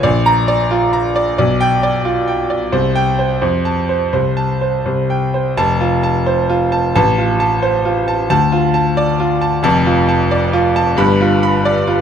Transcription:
0.03 A#1 D5
0.26 A#5
0.48 D5
0.71 F4
0.93 A#5
1.16 D5
1.38 B1 D5
1.61 G5
1.83 D5
2.05 F4
2.28 G5
2.50 D5
2.72 C2 C5
2.95 G5
3.19 C5
3.41 F2 C5
3.65 A5
3.89 C5
4.13 C2 C5
4.37 A5
4.61 C5
4.85 C2 C5
5.10 G5
5.34 C5
5.57 F1 A5
5.81 F4
6.03 A5
6.26 C5
6.50 F4
6.72 A5
6.96 A1 A5
7.18 F4
7.40 A5
7.62 C5
7.85 F4
8.08 A5
8.30 D2 A5
8.52 F4
8.74 A5
8.97 D5
9.20 F4
9.41 A5
9.63 F1 F2 A5
9.86 F4
10.09 A5
10.31 D5
10.53 F4
10.76 A5
10.97 G1 G2 B5
11.21 F4
11.43 B5
11.65 D5
11.88 F4

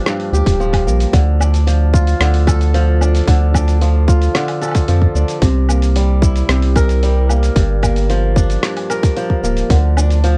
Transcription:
Already playing: F3 A#3 D4
0.06 G2, cross-stick, shaker
0.20 open hi-hat
0.33 D2 G4, shaker
0.46 D1, kick, open hi-hat, shaker
0.60 F3, shaker
0.73 kick, open hi-hat, low woodblock
0.87 A#1 A#3, shaker
1.00 open hi-hat, shaker
1.13 D2 D3, kick, open hi-hat, shaker
1.40 D4, low woodblock, shaker
1.54 open hi-hat, shaker
1.67 F3, open hi-hat, shaker
1.94 F4, kick, shaker
2.07 open hi-hat, shaker
2.20 D2 D3, cross-stick, open hi-hat, shaker
2.34 open hi-hat
2.47 A4, kick, open hi-hat, low woodblock, shaker
2.61 open hi-hat, shaker
2.74 F3, open hi-hat, shaker
3.01 D4, low woodblock, shaker
3.15 open hi-hat, shaker
3.17 open hi-hat
3.19 open hi-hat
3.21 open hi-hat
3.24 open hi-hat
3.26 D2 D3, kick, open hi-hat
3.28 open hi-hat, shaker
3.54 D4, kick, low woodblock, shaker
3.68 open hi-hat, shaker
3.81 F3, open hi-hat, shaker
4.08 F4, kick, shaker
4.22 open hi-hat, shaker
4.35 D3, cross-stick, open hi-hat, shaker
4.48 open hi-hat, low woodblock
4.62 A4, open hi-hat, low woodblock, shaker
4.65 low woodblock
4.68 low woodblock
4.71 kick, open hi-hat, low woodblock
4.76 shaker
4.88 F2 F3, open hi-hat, shaker
5.02 kick
5.15 D2 D4, shaker
5.28 open hi-hat, shaker
5.42 C2 C3, kick, open hi-hat, shaker
5.69 A#3, low woodblock, shaker
5.82 open hi-hat, shaker
5.96 G3, open hi-hat, shaker
6.22 E4, kick, shaker
6.36 open hi-hat, shaker
6.49 C2 C3, cross-stick, open hi-hat, shaker
6.62 open hi-hat
6.76 A#4, kick, open hi-hat, low woodblock, shaker
6.89 open hi-hat, shaker
7.03 G3, open hi-hat, shaker
7.29 A#3, low woodblock, shaker
7.43 open hi-hat, shaker
7.56 G1 G2, kick, open hi-hat, shaker
7.83 A#3, kick, open hi-hat, low woodblock, shaker
7.96 open hi-hat, shaker
8.10 F3, open hi-hat, shaker
8.36 D4, kick, shaker
8.50 open hi-hat, shaker
8.63 G2, cross-stick, open hi-hat, shaker
8.77 open hi-hat, low woodblock
8.90 A#4, open hi-hat, low woodblock, shaker
9.03 kick, open hi-hat, shaker
9.17 F3, open hi-hat, shaker
9.30 kick
9.43 D1 A#3, shaker
9.57 open hi-hat, shaker
9.70 D2 D3, kick, open hi-hat, shaker
9.97 D4, low woodblock, shaker
10.10 open hi-hat, shaker
10.24 F3, open hi-hat, shaker

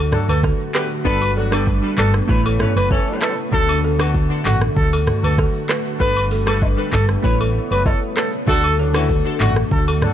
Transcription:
Already playing: D2 D3 A3 D4 F#4 A4
0.12 F#3 D4 A4, cross-stick, mid tom, shaker
0.28 D2 A4 B4, high agogo, shaker
0.43 A4, kick, cross-stick, shaker
0.60 shaker
0.74 B3 G4 B4, cross-stick, clap
0.90 shaker
1.04 G1 D3 G3 B3 D4 A4 B4, kick, shaker
1.21 high agogo, shaker
1.36 F#3 D4 F#4 A4, shaker
1.51 D3 G3 B3 D4 G4 A4 B4, cross-stick, high agogo, shaker
1.67 kick, shaker
1.82 G3 D4 A4 B4, shaker
1.98 G1 D3 B3 A4, clap, mid tom, high agogo
2.14 cross-stick, shaker
2.28 A1 A3 E4 B4 C#5, kick, shaker
2.45 A4, high agogo, shaker
2.59 E3 C#4 B4, cross-stick, mid tom, shaker
2.76 F#1 B4, high agogo, shaker
2.91 E3 C#4 A4, kick, shaker
3.07 shaker
3.22 A4 B4, cross-stick, clap
3.38 shaker
3.51 D2 D3 D4 F#4 A4, kick, shaker
3.68 high agogo, shaker
3.84 A4, shaker
3.98 D3 D4 F#4 A4 B4, cross-stick, high agogo, shaker
4.14 kick, shaker
4.29 D3 D4 F#4 A4, shaker
4.45 A1 F#4 A4, clap, mid tom, high agogo
4.61 cross-stick, shaker
4.76 D2 A4, kick, shaker
4.92 A4, high agogo, shaker
5.07 cross-stick, mid tom, shaker
5.23 D2 A4 B4, high agogo, shaker
5.38 A4, kick, cross-stick, shaker
5.54 shaker
5.69 B4, cross-stick, clap
5.85 shaker
5.99 G1 G3 B3 D4 A4 B4, kick, shaker
6.16 high agogo, shaker
6.31 A4, open hi-hat, shaker
6.46 G3 D4 A4 B4, cross-stick, high agogo, shaker
6.62 kick, low woodblock, shaker
6.77 G3 D4 A4 B4, shaker
6.92 G1 A4, kick, clap, mid tom, high agogo
7.09 cross-stick, shaker
7.22 A1 A3 E4 B4 C#5, kick, shaker
7.40 A4, high agogo, shaker
7.71 F#1 B4, high agogo, shaker
7.86 A4, kick, low woodblock, shaker
8.02 shaker
8.17 A4 B4, cross-stick, clap, shaker
8.33 shaker
8.46 D2 D3 A3 D4 F#4 A4, kick, shaker
8.63 high agogo, shaker
8.79 A2 F#3 D4 A4, shaker
8.93 D3 E3 C#4 D4 E4 F#4 A4 B4, cross-stick, high agogo, shaker
9.09 kick, shaker
9.24 D3 D4 F#4 A4, shaker
9.40 A1 D3 A3 F#4 A4, clap, mid tom, high agogo
9.56 cross-stick, shaker
9.71 D2 A4, kick, shaker
9.87 A4, high agogo, shaker
10.02 F#3 D4 A4, cross-stick, mid tom, shaker

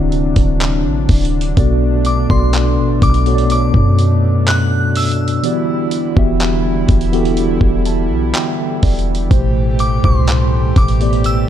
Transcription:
Already playing: D1 C3 D3 F#3 C4 D4 E4 F#4 D5 E5
0.12 closed hi-hat
0.36 D1, kick, closed hi-hat
0.61 clap, closed hi-hat
0.85 A1
1.09 D1, kick, closed hi-hat, open hi-hat
1.25 closed hi-hat
1.41 closed hi-hat
1.56 B1 B2 A3 B3 F#4 A4 D5, kick, closed hi-hat
2.05 D6, closed hi-hat
2.28 B1 B2 B3 F#4 A4 D5 C6, kick
2.53 clap, closed hi-hat
2.78 A1
3.02 B1 D6, kick, closed hi-hat, open hi-hat
3.14 closed hi-hat
3.25 B2 B3 F#4 A4 C#5, closed hi-hat
3.35 D5, closed hi-hat
3.50 D6, closed hi-hat
3.74 F#2, kick
3.99 closed hi-hat
4.48 F#6, clap, closed hi-hat
4.95 E6, closed hi-hat, open hi-hat
5.11 closed hi-hat
5.28 closed hi-hat
5.43 D3 E3 G3 B3 E4 F#4 G4 D5, closed hi-hat
5.91 closed hi-hat
6.16 E1 E3 B3 F#4 G4 E5, kick
6.40 clap, closed hi-hat
6.88 E1, kick, closed hi-hat, open hi-hat
7.01 closed hi-hat
7.12 E3 B3 F#4 G4 A4, closed hi-hat
7.25 closed hi-hat
7.37 closed hi-hat
7.61 E1, kick
7.85 A5, closed hi-hat
8.09 B1
8.34 G5, clap, closed hi-hat
8.83 E1 D5, kick, closed hi-hat, open hi-hat
8.99 closed hi-hat
9.15 closed hi-hat
9.29 A1 A2 B2 E3 A3 G4 C5, kick, closed hi-hat
9.79 D6, closed hi-hat
10.03 C2 A2 B2 A3 G4 C5 C6, kick
10.27 clap, closed hi-hat
10.76 A1 D6, kick, closed hi-hat, open hi-hat
10.88 closed hi-hat
10.99 A2 A3 B3 G4 D5, closed hi-hat
11.13 closed hi-hat
11.24 E6, closed hi-hat

